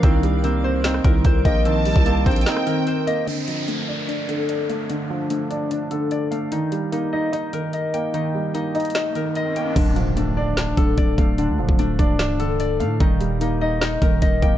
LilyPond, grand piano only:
\new Staff \with { instrumentName = "Grand piano" } { \time 4/4 \key d \phrygian \tempo 4 = 148 ees8 g8 bes8 c'8 ees'8 ees4 bes8 | ees8 g8 bes8 c'8 ees'8 ees4 bes8 | d8 f8 a8 d'8 d''8 d4 a8 | d8 f8 a8 d'8 d''8 d4 a8 |
ees8 g8 bes8 ees'8 ees''8 ees4 bes8 | ees8 g8 bes8 ees'8 ees''8 ees4 bes8 | d8 f8 a8 d'8 d''8 d4 a8 | d8 f8 a8 d'8 d''8 d4 a8 |
ees8 g8 bes8 ees'8 ees''8 ees4 bes8 | }